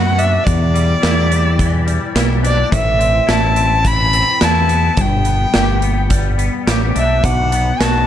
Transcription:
0.00 0.37 F#2 medium
0.00 0.47 F#3 medium
0.00 0.74 B3 medium
0.00 0.47 F#4 medium
0.00 0.20 F#5 medium
0.18 0.46 D4 medium
0.18 0.46 E5 medium
0.18 closed hi-hat medium
0.44 1.88 E2 medium
0.44 0.94 E2 medium
0.44 2.15 D5 medium
0.44 kick loud
0.44 closed hi-hat medium
0.74 1.29 G3 medium
0.74 closed hi-hat medium
1.02 1.97 E2 medium
1.02 2.14 E4 medium
1.02 snare medium
1.02 closed hi-hat medium
1.30 1.85 G3 medium
1.30 closed hi-hat medium
1.59 2.72 E3 medium
1.59 kick medium
1.59 closed hi-hat medium
1.86 2.72 G3 medium
1.86 closed hi-hat medium
2.15 2.63 B1 loud
2.15 2.72 E4 medium
2.15 snare loud
2.15 closed hi-hat medium
2.43 2.72 D4 medium
2.43 2.71 D5 medium
2.43 closed hi-hat medium
2.71 3.19 A1 medium
2.71 4.13 A2 medium
2.71 3.32 E5 medium
2.71 kick medium
2.71 closed hi-hat medium
2.99 3.55 C4 medium
2.99 closed hi-hat medium
3.27 4.22 A1 medium
3.27 4.40 E4 medium
3.27 3.88 A5 medium
3.27 snare medium
3.27 closed hi-hat medium
3.56 4.12 C4 medium
3.56 closed hi-hat medium
3.84 4.97 E3 medium
3.84 4.46 B5 loud
3.84 kick medium
3.84 closed hi-hat medium
4.13 4.98 C4 medium
4.13 closed hi-hat medium
4.41 4.89 E2 medium
4.41 4.98 E4 medium
4.41 5.02 A5 medium
4.41 snare loud
4.41 closed hi-hat medium
4.69 5.26 B3 medium
4.69 closed hi-hat medium
4.97 5.45 G1 medium
4.97 6.39 G2 medium
4.97 kick loud
4.97 closed hi-hat medium
5.01 6.12 G5 medium
5.25 5.83 B3 medium
5.25 closed hi-hat medium
5.54 6.48 G1 medium
5.54 6.66 G4 medium
5.54 snare loud
5.54 closed hi-hat medium
5.82 6.38 B3 medium
5.82 closed hi-hat medium
6.10 7.23 G3 medium
6.10 kick medium
6.10 closed hi-hat medium
6.38 7.52 B3 medium
6.38 closed hi-hat medium
6.67 6.92 A1 medium
6.67 7.23 G4 medium
6.67 snare loud
6.67 closed hi-hat medium
6.95 7.21 B1 medium
6.95 8.07 D4 medium
6.95 7.26 E5 medium
6.95 closed hi-hat medium
7.23 7.71 B1 medium
7.23 8.07 B2 medium
7.23 7.83 F#5 medium
7.23 kick loud
7.23 closed hi-hat medium
7.52 8.07 B3 medium
7.52 closed hi-hat medium
7.80 8.07 B1 medium
7.80 8.07 F#4 medium
7.80 8.07 A5 medium
7.80 snare medium
7.80 closed hi-hat medium

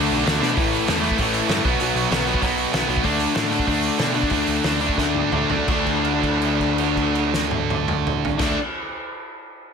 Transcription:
0.00 0.25 D3 loud
0.00 0.25 A3 loud
0.00 0.25 D4 loud
0.11 0.23 B1 medium
0.26 0.39 D2 medium
0.26 0.40 D3 medium
0.26 0.41 A3 medium
0.26 0.40 D4 medium
0.26 snare loud
0.26 open hi-hat medium
0.41 0.54 B2 medium
0.41 0.56 D3 medium
0.41 0.56 A3 medium
0.41 0.55 D4 loud
0.41 snare medium
0.56 0.78 A1 medium
0.56 0.87 A2 medium
0.56 0.88 E3 loud
0.56 0.88 A3 loud
0.56 kick loud
0.56 open hi-hat medium
0.73 open hi-hat medium
0.88 1.09 E2 medium
0.88 1.03 A2 medium
0.88 1.02 E3 medium
0.88 1.02 A3 medium
0.88 snare loud
0.88 open hi-hat medium
1.03 1.18 A2 medium
1.03 1.18 E3 medium
1.03 1.18 A3 loud
1.03 open hi-hat medium
1.11 kick medium
1.18 1.40 A1 medium
1.18 1.48 A2 loud
1.18 1.48 E3 loud
1.18 1.49 A3 loud
1.18 kick medium
1.18 open hi-hat medium
1.33 open hi-hat medium
1.49 1.59 G2 medium
1.49 1.64 A2 medium
1.49 1.64 E3 medium
1.49 1.64 A3 medium
1.49 snare loud
1.49 open hi-hat medium
1.65 1.75 B1 medium
1.65 1.80 B2 medium
1.65 1.81 F#3 loud
1.65 1.80 B3 loud
1.65 kick medium
1.65 open hi-hat soft
1.80 1.91 B1 medium
1.80 2.12 B2 medium
1.80 2.13 F#3 loud
1.80 2.11 B3 loud
1.80 open hi-hat medium
1.95 2.05 B1 medium
1.95 open hi-hat medium
2.11 2.32 B1 medium
2.11 2.25 B2 medium
2.11 2.27 F#3 medium
2.11 2.26 B3 medium
2.11 snare loud
2.11 open hi-hat medium
2.26 2.41 B2 medium
2.26 2.41 F#3 medium
2.26 2.40 B3 loud
2.26 open hi-hat soft
2.34 kick medium
2.41 2.64 B1 medium
2.41 2.72 B2 medium
2.41 2.73 F#3 medium
2.41 2.71 B3 medium
2.41 kick medium
2.41 open hi-hat medium
2.57 open hi-hat soft
2.72 2.84 B1 medium
2.72 2.86 B2 medium
2.72 2.87 F#3 medium
2.72 2.87 B3 medium
2.72 snare loud
2.72 open hi-hat medium
2.87 2.99 B1 medium
2.87 3.02 B2 medium
2.87 3.03 F#3 medium
2.87 3.03 B3 medium
2.87 open hi-hat medium
2.97 kick medium
3.03 3.26 D2 medium
3.03 3.34 D3 medium
3.03 3.34 A3 medium
3.03 3.35 D4 medium
3.03 kick medium
3.03 open hi-hat medium
3.20 open hi-hat medium
3.34 3.57 A2 medium
3.34 3.52 D3 medium
3.34 3.51 A3 medium
3.34 3.51 D4 medium
3.34 snare loud
3.34 open hi-hat medium
3.51 3.66 D3 medium
3.51 3.67 A3 medium
3.51 3.67 D4 loud
3.51 open hi-hat medium
3.59 kick medium
3.66 3.89 D2 medium
3.66 3.99 D3 medium
3.66 3.99 A3 loud
3.66 4.00 D4 medium
3.66 kick medium
3.66 open hi-hat medium
3.82 open hi-hat soft
3.99 4.21 B2 medium
3.99 4.15 D3 medium
3.99 4.14 A3 medium
3.99 4.14 D4 medium
3.99 snare loud
3.99 open hi-hat medium
4.14 4.30 D3 medium
4.14 4.30 A3 medium
4.14 4.31 D4 loud
4.14 open hi-hat soft
4.23 kick medium
4.30 4.42 D2 medium
4.30 4.63 D3 medium
4.30 4.64 A3 medium
4.30 4.64 D4 loud
4.30 kick medium
4.30 open hi-hat medium
4.46 4.59 D2 medium
4.46 open hi-hat medium
4.64 4.87 D2 medium
4.64 4.80 D3 medium
4.64 4.80 A3 medium
4.64 4.80 D4 medium
4.64 snare loud
4.64 open hi-hat medium
4.80 4.96 D3 medium
4.80 4.96 A3 medium
4.80 4.97 D4 medium
4.80 open hi-hat medium
4.89 kick medium
4.97 5.22 D2 medium
4.97 5.31 D3 medium
4.97 5.32 A3 medium
4.97 5.32 D4 medium
4.97 kick medium
4.97 snare soft
5.14 high tom medium
5.32 5.44 D2 medium
5.32 5.51 D3 medium
5.32 5.50 A3 medium
5.32 5.49 D4 medium
5.32 mid tom medium
5.50 5.62 D2 medium
5.50 5.66 D3 medium
5.50 5.67 A3 medium
5.50 5.67 D4 medium
5.50 floor tom medium
5.67 8.30 D2 medium
5.67 8.37 D3 loud
5.67 8.39 A3 medium
5.67 8.41 D4 medium
5.67 kick medium
5.67 crash medium
5.86 kick medium
5.86 crash soft
6.04 crash soft
6.23 kick medium
6.23 crash soft
6.42 crash soft
6.60 kick medium
6.60 crash soft
6.78 crash soft
6.97 kick medium
6.97 crash soft
7.15 crash soft
7.34 snare medium
7.51 high tom medium
7.70 high tom medium
7.88 mid tom medium
8.07 mid tom medium
8.25 floor tom medium
8.38 8.54 D2 medium
8.38 8.54 D3 loud
8.38 8.55 A3 loud
8.38 8.56 D4 loud
8.38 kick loud
8.38 snare medium
8.38 crash medium

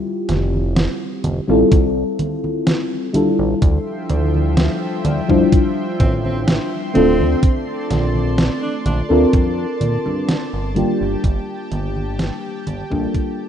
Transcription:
0.00 1.42 G3 medium
0.00 1.42 C4 medium
0.00 1.43 E4 medium
0.00 1.43 F4 medium
0.00 1.44 G4 medium
0.29 0.88 F1 loud
0.29 snare medium
0.29 closed hi-hat medium
0.29 high conga medium
0.54 high conga soft
0.76 snare loud
0.76 closed hi-hat medium
0.76 high conga soft
1.24 1.41 F1 medium
1.24 closed hi-hat medium
1.24 high conga medium
1.48 1.64 A1 loud
1.48 3.08 G3 medium
1.48 3.09 C4 medium
1.48 3.09 E4 medium
1.48 3.10 F4 medium
1.48 3.10 A4 loud
1.48 high conga soft
1.72 2.04 C2 medium
1.72 kick loud
1.72 closed hi-hat medium
1.72 high conga soft
2.19 closed hi-hat medium
2.19 high conga medium
2.44 high conga soft
2.67 snare loud
2.67 closed hi-hat medium
2.67 high conga soft
3.13 5.23 G3 medium
3.13 5.23 D4 medium
3.13 5.24 E4 medium
3.13 5.24 F4 medium
3.13 5.25 A4 medium
3.13 closed hi-hat medium
3.13 high conga medium
3.39 3.55 A1 loud
3.39 high conga soft
3.62 3.79 D2 loud
3.62 7.39 F3 medium
3.62 7.39 E5 medium
3.62 7.39 G5 medium
3.62 10.72 C6 medium
3.62 kick loud
3.62 closed hi-hat medium
3.62 high conga soft
4.10 4.69 D2 loud
4.10 closed hi-hat medium
4.10 high conga medium
4.34 high conga soft
4.57 snare loud
4.57 closed hi-hat medium
4.57 high conga soft
5.05 5.22 D2 loud
5.05 closed hi-hat medium
5.05 high conga medium
5.28 5.45 F2 loud
5.28 6.89 G3 medium
5.28 6.90 D4 medium
5.28 6.90 E4 medium
5.28 6.90 F4 medium
5.28 6.91 C5 medium
5.28 kick medium
5.28 high conga soft
5.52 kick loud
5.52 closed hi-hat medium
5.52 high conga soft
6.00 6.59 A1 medium
6.00 6.16 C4 medium
6.00 kick loud
6.00 closed hi-hat medium
6.00 high conga medium
6.25 6.40 C4 medium
6.25 high conga soft
6.48 snare loud
6.48 closed hi-hat medium
6.48 high conga soft
6.94 7.21 D1 loud
6.94 9.04 A3 medium
6.94 9.04 C4 medium
6.94 7.53 C4 loud
6.94 9.05 D4 medium
6.94 9.05 F4 medium
6.94 9.05 A4 loud
6.94 closed hi-hat medium
6.94 high conga medium
7.20 7.35 D2 loud
7.20 high conga soft
7.43 10.73 D5 medium
7.43 13.49 A5 medium
7.43 kick loud
7.43 closed hi-hat medium
7.43 high conga soft
7.91 8.50 A#1 loud
7.91 snare medium
7.91 closed hi-hat medium
7.91 high conga medium
8.15 high conga soft
8.38 snare loud
8.38 closed hi-hat medium
8.38 high conga soft
8.63 8.77 D4 medium
8.86 9.02 A#1 loud
8.86 9.02 D4 medium
8.86 closed hi-hat medium
8.86 high conga medium
9.09 9.26 D2 loud
9.09 10.70 C4 medium
9.09 10.71 D4 medium
9.09 10.71 F4 medium
9.09 10.70 A4 medium
9.09 10.72 A#4 loud
9.09 high conga soft
9.33 9.66 F2 medium
9.33 kick loud
9.33 closed hi-hat medium
9.33 high conga soft
9.81 9.98 A#2 medium
9.81 closed hi-hat medium
9.81 high conga medium
10.06 10.37 G2 medium
10.06 high conga soft
10.29 snare loud
10.29 closed hi-hat medium
10.29 high conga soft
10.53 10.85 G1 medium
10.75 12.85 G3 medium
10.75 12.85 A#3 medium
10.75 12.86 D4 medium
10.75 12.86 F4 medium
10.75 13.49 G4 medium
10.75 12.86 G4 loud
10.75 13.49 G5 medium
10.75 closed hi-hat medium
10.75 high conga medium
11.01 11.16 G1 medium
11.01 high conga soft
11.24 11.41 G1 loud
11.24 kick loud
11.24 closed hi-hat medium
11.24 high conga soft
11.71 12.31 G1 loud
11.71 closed hi-hat medium
11.71 high conga medium
11.96 high conga soft
12.19 snare loud
12.19 closed hi-hat medium
12.19 high conga soft
12.67 12.83 G1 medium
12.67 closed hi-hat medium
12.67 high conga medium
12.90 13.07 A#1 loud
12.90 13.49 G3 medium
12.90 13.49 A#3 medium
12.90 13.49 D4 medium
12.90 13.49 F4 medium
12.90 13.49 A4 medium
12.90 kick medium
12.90 high conga soft
13.14 kick loud
13.14 closed hi-hat medium
13.14 high conga soft

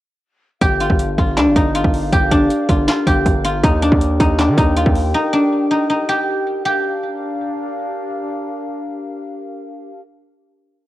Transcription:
0.61 0.89 G1 loud
0.61 3.60 D4 medium
0.61 2.12 G4 loud
0.61 3.60 G4 medium
0.61 6.61 A#4 medium
0.61 3.60 F5 medium
0.61 kick loud
0.61 closed hi-hat medium
0.80 1.18 F4 medium
0.80 closed hi-hat medium
0.90 1.17 G1 loud
0.90 kick medium
0.99 closed hi-hat medium
1.18 1.38 G1 loud
1.18 1.74 F4 medium
1.18 kick loud
1.18 closed hi-hat medium
1.37 1.48 D2 loud
1.37 1.62 D4 medium
1.37 snare loud
1.37 clap loud
1.37 closed hi-hat medium
1.46 1.55 G1 loud
1.56 1.83 G1 loud
1.56 2.37 D#4 medium
1.56 kick loud
1.56 closed hi-hat medium
1.75 2.68 F4 medium
1.75 closed hi-hat medium
1.84 2.11 G1 loud
1.84 kick medium
1.94 open hi-hat medium
2.12 2.31 G1 loud
2.12 3.06 G4 medium
2.12 kick loud
2.12 closed hi-hat medium
2.31 2.49 G1 loud
2.31 3.70 D4 loud
2.31 kick medium
2.31 closed hi-hat medium
2.50 closed hi-hat medium
2.69 2.87 G1 loud
2.69 2.87 F4 medium
2.69 kick loud
2.69 closed hi-hat medium
2.88 3.44 F4 medium
2.88 snare loud
2.88 clap loud
2.88 closed hi-hat medium
3.07 3.25 G1 loud
3.07 5.42 G4 medium
3.07 kick loud
3.07 closed hi-hat medium
3.26 3.62 G1 loud
3.26 kick medium
3.26 closed hi-hat medium
3.44 4.76 F4 medium
3.44 closed hi-hat medium
3.63 3.91 D#2 loud
3.63 3.88 D#4 medium
3.63 6.62 G4 medium
3.63 6.62 G5 medium
3.63 kick loud
3.63 closed hi-hat medium
3.82 4.26 D4 medium
3.82 closed hi-hat medium
3.92 4.19 D#2 loud
3.92 kick medium
4.01 closed hi-hat medium
4.20 4.50 D#2 loud
4.20 4.45 D#4 medium
4.20 kick loud
4.20 closed hi-hat medium
4.39 4.64 D4 medium
4.39 snare loud
4.39 clap loud
4.39 closed hi-hat medium
4.48 4.57 D#3 loud
4.58 4.85 D#2 loud
4.58 5.14 D#4 medium
4.58 kick loud
4.58 closed hi-hat medium
4.77 7.29 F4 medium
4.77 closed hi-hat medium
4.86 5.13 D#2 loud
4.86 kick loud
4.95 open hi-hat medium
5.14 5.39 D#4 medium
5.33 5.77 D4 medium
5.71 5.89 D#4 medium
5.90 8.60 D#4 medium
6.09 6.65 G4 medium
6.65 10.00 D4 medium
6.65 9.01 G4 medium
6.65 10.00 G4 medium
6.65 10.00 A#4 medium
6.65 10.00 F5 medium

